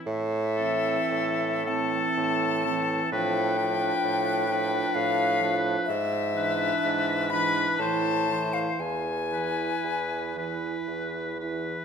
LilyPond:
<<
  \new Staff \with { instrumentName = "Flute" } { \time 3/4 \key a \minor \tempo 4 = 61 e''4. a''4. | g''2 f''4 | e''4. b''8 a''8. f''16 | gis''2 r4 | }
  \new Staff \with { instrumentName = "Oboe" } { \time 3/4 \key a \minor r8 a'4 a'4 a'8 | b'8 b'4 b'4 b'8 | r8 b'4 b'8 c''8 c''8 | r8 b'4 b'4 b'8 | }
  \new Staff \with { instrumentName = "Clarinet" } { \time 3/4 \key a \minor r8 c'4 c'4 c'8 | d'8 d'4 d'4 d'8 | r8 d'4 d'8 e'8 e'8 | r8 e'4 e'4 e'8 | }
  \new Staff \with { instrumentName = "French horn" } { \clef bass \time 3/4 \key a \minor r8 e4 e4 e8 | f8 f4 f4 f8 | r8 e4 e8 e8 e8 | r8 e4 e4 e8 | }
  \new Staff \with { instrumentName = "Bassoon" } { \clef bass \time 3/4 \key a \minor a,4 a,4 a,4 | a,4 a,4 a,4 | gis,4 gis,4 a,4 | e,4 e,4 e,4 | }
>>